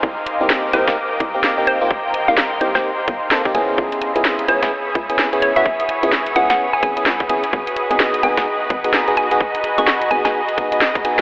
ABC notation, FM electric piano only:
X:1
M:4/4
L:1/16
Q:"Swing 16ths" 1/4=128
K:Cphr
V:1 name="FM electric piano"
z3 [B,CEG]3 [B,CEG] [B,CEG] z3 [B,CEG]2 [B,CEG]2 [B,CEF] | z3 [B,CEG] z2 [B,CEG] [B,CEG] z4 [B,CE=A] [B,CEG] [=B,D=E_A]2- | [=B,D=EA]3 [_CD_FA]3 [CDFA] [CDFA] z3 [CDFA]2 [CDFA]2 [CDF_G] | z3 [_CD_FA] z2 [CDFA] [CDFA] z2 [CDFA] [CDFA] z2 [CDFA] z |
z3 [_CE_GA]3 [CEGA] [CEGA] z3 [CEGA]2 [CEGA]2 [CEGA] | z3 [_CE_GA] z2 [CEGA] [CEGA] z2 [CEGA] [CEGA] z2 [CEGA] z |]